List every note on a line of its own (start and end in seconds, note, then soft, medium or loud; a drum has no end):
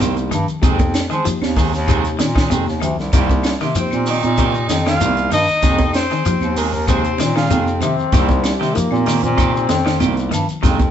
0.00 0.27 C2 medium
0.00 0.27 C3 medium
0.00 0.16 D#3 medium
0.00 0.37 F3 medium
0.00 0.37 A#3 medium
0.00 0.16 A#3 medium
0.00 0.16 C4 medium
0.00 0.37 D#4 medium
0.00 0.37 G4 loud
0.00 0.16 G4 medium
0.00 closed hi-hat medium
0.00 high conga medium
0.00 shekere medium
0.17 muted clean electric guitar stroke soft
0.17 closed hi-hat soft
0.17 shekere soft
0.31 0.46 G2 medium
0.31 0.59 D#3 medium
0.31 muted clean electric guitar stroke soft
0.31 closed hi-hat medium
0.31 low conga medium
0.31 claves medium
0.31 shekere medium
0.48 0.55 C2 soft
0.48 closed hi-hat soft
0.48 shekere soft
0.62 1.05 F2 medium
0.62 0.90 C3 loud
0.62 0.79 D#3 medium
0.62 1.00 F3 loud
0.62 0.79 G#3 medium
0.62 1.00 A#3 loud
0.62 0.79 C4 medium
0.62 1.00 D#4 loud
0.62 1.00 G4 loud
0.62 0.79 G#4 medium
0.62 kick loud
0.62 closed hi-hat medium
0.62 high conga soft
0.62 low conga medium
0.62 shekere medium
0.79 muted clean electric guitar stroke soft
0.79 kick medium
0.79 closed hi-hat soft
0.79 high conga medium
0.79 shekere soft
0.94 muted clean electric guitar stroke soft
0.94 snare medium
0.94 closed hi-hat soft
0.94 claves medium
0.94 shekere medium
1.10 1.23 D#3 medium
1.10 1.24 F3 medium
1.10 1.25 G#3 soft
1.10 1.25 C4 medium
1.10 1.25 G#4 medium
1.10 closed hi-hat soft
1.10 shekere soft
1.24 1.62 F3 medium
1.24 1.53 F3 medium
1.24 1.62 A#3 medium
1.24 1.62 D#4 medium
1.24 1.62 G4 loud
1.24 muted clean electric guitar stroke soft
1.24 closed hi-hat medium
1.24 high conga soft
1.24 shekere medium
1.42 1.70 D#2 medium
1.42 snare medium
1.42 high conga medium
1.42 claves medium
1.42 shekere soft
1.56 1.73 D#3 medium
1.56 1.84 D#3 medium
1.56 1.73 G#3 medium
1.56 1.73 C4 medium
1.56 1.73 G#4 medium
1.56 kick medium
1.56 open hi-hat medium
1.56 high conga medium
1.56 shekere medium
1.74 2.14 D#2 loud
1.74 muted clean electric guitar stroke soft
1.74 snare soft
1.74 shekere soft
1.87 2.16 C3 medium
1.87 2.05 D#3 loud
1.87 2.25 F3 medium
1.87 2.05 G#3 medium
1.87 2.25 A#3 medium
1.87 2.04 C4 loud
1.87 2.25 D#4 medium
1.87 2.25 G4 medium
1.87 2.04 G#4 loud
1.87 kick medium
1.87 closed hi-hat medium
1.87 claves medium
1.87 shekere medium
2.04 muted clean electric guitar stroke soft
2.04 closed hi-hat soft
2.04 shekere soft
2.19 2.47 A#2 medium
2.19 2.33 D#3 medium
2.19 muted clean electric guitar stroke soft
2.19 snare medium
2.19 closed hi-hat soft
2.19 high conga medium
2.19 shekere medium
2.35 2.48 D#3 medium
2.35 2.50 G#3 soft
2.35 2.51 C4 medium
2.35 2.51 G#4 medium
2.35 kick medium
2.35 snare medium
2.35 claves medium
2.35 shekere soft
2.50 2.65 F2 medium
2.50 2.78 C3 medium
2.50 2.67 D#3 medium
2.50 2.88 F3 medium
2.50 2.67 G#3 medium
2.50 2.88 A#3 medium
2.50 2.66 C4 medium
2.50 2.88 D#4 medium
2.50 2.88 G4 loud
2.50 2.66 G#4 medium
2.50 closed hi-hat medium
2.50 high conga medium
2.50 shekere medium
2.67 2.80 D#2 medium
2.67 muted clean electric guitar stroke soft
2.67 snare soft
2.67 shekere soft
2.80 2.97 D2 medium
2.80 3.09 D#3 medium
2.80 muted clean electric guitar stroke soft
2.80 closed hi-hat medium
2.80 low conga medium
2.80 claves medium
2.80 shekere medium
2.98 3.12 C2 medium
2.98 snare soft
2.98 shekere soft
3.13 3.55 C2 medium
3.13 3.41 C3 medium
3.13 3.29 D#3 medium
3.13 3.51 F3 loud
3.13 3.29 A#3 medium
3.13 3.51 A#3 medium
3.13 3.30 C4 medium
3.13 3.51 D#4 medium
3.13 3.29 G4 medium
3.13 3.51 G4 loud
3.13 kick medium
3.13 closed hi-hat medium
3.13 high conga soft
3.13 low conga medium
3.13 shekere medium
3.29 muted clean electric guitar stroke soft
3.29 kick medium
3.29 high conga medium
3.29 shekere soft
3.43 muted clean electric guitar stroke soft
3.43 snare medium
3.43 closed hi-hat soft
3.43 claves medium
3.43 shekere medium
3.60 3.74 C3 medium
3.60 3.74 D#3 medium
3.60 3.75 A#3 soft
3.60 3.75 C4 medium
3.60 3.75 G4 soft
3.60 snare soft
3.60 shekere soft
3.75 4.03 F3 medium
3.75 4.14 F3 medium
3.75 4.14 A#3 medium
3.75 4.06 C4 medium
3.75 4.14 D#4 medium
3.75 4.14 G4 medium
3.75 4.06 C5 medium
3.75 muted clean electric guitar stroke soft
3.75 closed hi-hat medium
3.75 high conga soft
3.75 shekere medium
3.91 4.20 A#2 medium
3.91 high conga medium
3.91 claves medium
3.91 shekere soft
4.06 4.23 D#3 medium
4.06 4.23 A#3 medium
4.06 4.23 C4 medium
4.06 4.83 D#4 loud
4.06 4.23 G4 medium
4.06 4.83 D#5 medium
4.06 open hi-hat medium
4.06 shekere medium
4.23 4.64 A#2 medium
4.23 muted clean electric guitar stroke soft
4.23 closed hi-hat soft
4.23 high conga medium
4.23 shekere soft
4.38 4.66 C3 medium
4.38 4.55 D#3 medium
4.38 4.76 F3 medium
4.38 4.76 A#3 medium
4.38 4.54 A#3 medium
4.38 4.54 C4 medium
4.38 4.76 D#4 medium
4.38 4.76 G4 medium
4.38 4.54 G4 loud
4.38 kick medium
4.38 closed hi-hat medium
4.38 claves medium
4.38 shekere medium
4.55 muted clean electric guitar stroke soft
4.55 shekere soft
4.69 4.97 F2 medium
4.69 4.84 D#3 medium
4.69 muted clean electric guitar stroke soft
4.69 snare medium
4.69 closed hi-hat soft
4.69 high conga medium
4.69 shekere medium
4.85 4.99 D#3 medium
4.85 5.00 A#3 soft
4.85 5.00 C4 soft
4.85 5.29 F4 medium
4.85 5.01 G4 medium
4.85 5.29 F5 loud
4.85 snare medium
4.85 claves medium
4.85 shekere soft
5.00 5.28 C2 medium
5.00 5.28 C3 medium
5.00 5.17 D#3 soft
5.00 5.38 F3 medium
5.00 5.17 A#3 medium
5.00 5.38 A#3 medium
5.00 5.16 C4 medium
5.00 5.39 D#4 medium
5.00 5.39 G4 medium
5.00 closed hi-hat medium
5.00 high conga medium
5.00 shekere medium
5.17 muted clean electric guitar stroke soft
5.17 closed hi-hat soft
5.17 shekere soft
5.31 5.46 G2 medium
5.31 5.60 D#3 medium
5.31 5.91 D#4 medium
5.31 5.91 D#5 loud
5.31 muted clean electric guitar stroke soft
5.31 closed hi-hat medium
5.31 low conga medium
5.31 claves medium
5.31 shekere medium
5.48 5.56 C2 soft
5.48 closed hi-hat soft
5.48 shekere soft
5.62 6.06 F2 medium
5.62 5.91 C3 medium
5.62 5.79 D#3 medium
5.62 6.01 F3 medium
5.62 5.78 G#3 medium
5.62 6.01 A#3 medium
5.62 5.78 C4 medium
5.62 6.01 D#4 medium
5.62 6.01 G4 loud
5.62 5.78 G#4 medium
5.62 kick medium
5.62 snare soft
5.62 closed hi-hat medium
5.62 high conga soft
5.62 low conga medium
5.62 shekere medium
5.79 muted clean electric guitar stroke soft
5.79 kick medium
5.79 closed hi-hat soft
5.79 high conga loud
5.79 shekere soft
5.93 6.59 C4 medium
5.93 6.59 C5 loud
5.93 muted clean electric guitar stroke soft
5.93 snare medium
5.93 closed hi-hat medium
5.93 claves medium
5.93 shekere medium
6.10 6.24 D#3 medium
6.10 6.25 C4 soft
6.10 6.25 G#4 medium
6.10 muted clean electric guitar stroke soft
6.10 snare soft
6.10 closed hi-hat soft
6.10 shekere soft
6.25 6.63 F3 medium
6.25 6.53 F3 medium
6.25 6.63 A#3 medium
6.25 6.64 D#4 medium
6.25 6.63 G4 medium
6.25 muted clean electric guitar stroke soft
6.25 closed hi-hat medium
6.25 high conga soft
6.25 shekere medium
6.41 6.70 D#2 medium
6.41 high conga medium
6.41 claves medium
6.41 shekere soft
6.56 6.73 D#3 medium
6.56 6.73 G#3 medium
6.56 6.87 A#3 medium
6.56 6.73 C4 medium
6.56 6.72 G#4 medium
6.56 6.88 A#4 medium
6.56 open hi-hat medium
6.56 high conga medium
6.56 shekere medium
6.73 7.14 D#2 medium
6.73 muted clean electric guitar stroke soft
6.73 low conga medium
6.73 shekere soft
6.87 7.16 C3 medium
6.87 7.05 D#3 medium
6.87 7.26 F3 medium
6.87 7.04 G#3 medium
6.87 7.26 A#3 medium
6.87 7.32 C4 medium
6.87 7.26 D#4 medium
6.87 7.26 G4 medium
6.87 7.04 G#4 medium
6.87 7.33 C5 medium
6.87 muted clean electric guitar stroke medium
6.87 kick medium
6.87 closed hi-hat medium
6.87 high conga soft
6.87 claves medium
6.87 shekere medium
7.04 muted clean electric guitar stroke soft
7.04 closed hi-hat soft
7.04 shekere soft
7.18 7.47 A#2 medium
7.18 7.34 D#3 medium
7.18 muted clean electric guitar stroke soft
7.18 snare medium
7.18 closed hi-hat medium
7.18 high conga medium
7.18 shekere medium
7.35 7.49 D#3 medium
7.35 7.49 G#3 soft
7.35 7.79 F4 medium
7.35 7.49 G#4 medium
7.35 7.79 F5 medium
7.35 snare medium
7.35 claves medium
7.35 shekere soft
7.50 7.78 F2 medium
7.50 7.78 C3 medium
7.50 7.67 D#3 medium
7.50 7.88 F3 medium
7.50 7.66 G#3 soft
7.50 7.88 A#3 medium
7.50 7.66 C4 medium
7.50 7.88 D#4 medium
7.50 7.88 G4 medium
7.50 7.65 G#4 medium
7.50 closed hi-hat medium
7.50 high conga medium
7.50 shekere medium
7.66 muted clean electric guitar stroke soft
7.66 shekere soft
7.81 7.96 C3 medium
7.81 8.10 D#3 medium
7.81 8.45 C4 loud
7.81 muted clean electric guitar stroke soft
7.81 closed hi-hat medium
7.81 low conga medium
7.81 claves medium
7.81 shekere medium
7.98 8.06 F2 soft
7.98 shekere soft
8.12 8.55 C2 loud
8.12 8.41 C3 medium
8.12 8.29 D#3 medium
8.12 8.51 F3 loud
8.12 8.51 A#3 loud
8.12 8.28 A#3 medium
8.12 8.28 C4 medium
8.12 8.51 D#4 medium
8.12 8.51 G4 loud
8.12 8.27 G4 medium
8.12 kick medium
8.12 snare soft
8.12 closed hi-hat medium
8.12 high conga soft
8.12 low conga medium
8.12 shekere medium
8.29 muted clean electric guitar stroke medium
8.29 kick medium
8.29 high conga loud
8.29 shekere soft
8.44 8.77 G3 medium
8.44 muted clean electric guitar stroke soft
8.44 snare medium
8.44 closed hi-hat medium
8.44 claves medium
8.44 shekere medium
8.60 8.74 C3 medium
8.60 8.74 D#3 medium
8.60 8.73 A#3 medium
8.60 8.74 C4 medium
8.60 8.74 G4 medium
8.60 snare soft
8.60 shekere soft
8.74 9.13 F3 medium
8.74 9.03 F3 medium
8.74 9.13 A#3 medium
8.74 9.25 A#3 medium
8.74 9.13 D#4 medium
8.74 9.13 G4 loud
8.74 muted clean electric guitar stroke soft
8.74 closed hi-hat medium
8.74 high conga soft
8.74 shekere medium
8.91 9.19 A#2 medium
8.91 high conga medium
8.91 claves medium
8.91 shekere soft
9.06 9.23 D#3 medium
9.06 9.35 D#3 medium
9.06 9.23 A#3 medium
9.06 9.22 C4 medium
9.06 9.22 G4 medium
9.06 open hi-hat medium
9.06 high conga medium
9.06 shekere medium
9.23 9.64 A#2 loud
9.23 10.48 C4 loud
9.23 muted clean electric guitar stroke medium
9.23 closed hi-hat soft
9.23 high conga medium
9.23 low conga medium
9.23 shekere soft
9.37 9.65 C3 medium
9.37 9.54 D#3 loud
9.37 9.76 F3 medium
9.37 9.53 A#3 medium
9.37 9.76 A#3 medium
9.37 9.53 C4 medium
9.37 9.76 D#4 medium
9.37 9.53 G4 loud
9.37 9.76 G4 medium
9.37 kick medium
9.37 closed hi-hat medium
9.37 high conga soft
9.37 claves medium
9.37 shekere medium
9.54 muted clean electric guitar stroke soft
9.54 shekere soft
9.69 9.97 F2 medium
9.69 9.84 D#3 medium
9.69 muted clean electric guitar stroke medium
9.69 snare medium
9.69 closed hi-hat soft
9.69 high conga medium
9.69 shekere medium
9.85 9.99 D#3 medium
9.85 9.98 A#3 soft
9.85 9.99 C4 medium
9.85 9.99 G4 medium
9.85 snare medium
9.85 claves medium
9.85 shekere soft
10.00 10.29 C2 medium
10.00 10.28 C3 medium
10.00 10.17 D#3 medium
10.00 10.38 F3 loud
10.00 10.16 A#3 medium
10.00 10.38 A#3 medium
10.00 10.16 C4 medium
10.00 10.38 D#4 medium
10.00 10.38 F4 loud
10.00 10.15 G4 medium
10.00 closed hi-hat medium
10.00 high conga medium
10.00 shekere medium
10.16 muted clean electric guitar stroke soft
10.16 closed hi-hat soft
10.16 shekere soft
10.31 10.47 G2 medium
10.31 10.59 D#3 medium
10.31 muted clean electric guitar stroke soft
10.31 closed hi-hat medium
10.31 low conga medium
10.31 claves medium
10.31 shekere medium
10.49 10.56 C2 soft
10.49 closed hi-hat soft
10.49 shekere soft
10.62 10.91 F2 medium
10.62 10.90 C3 medium
10.62 10.79 D#3 medium
10.62 10.91 F3 loud
10.62 10.79 G#3 medium
10.62 10.91 A#3 medium
10.62 10.78 C4 medium
10.62 10.91 D#4 loud
10.62 10.78 F4 medium
10.62 10.91 G4 loud
10.62 kick medium
10.62 snare soft
10.62 closed hi-hat medium
10.62 high conga soft
10.62 low conga medium
10.62 shekere medium
10.79 muted clean electric guitar stroke soft
10.79 kick medium
10.79 closed hi-hat soft
10.79 high conga loud
10.79 shekere soft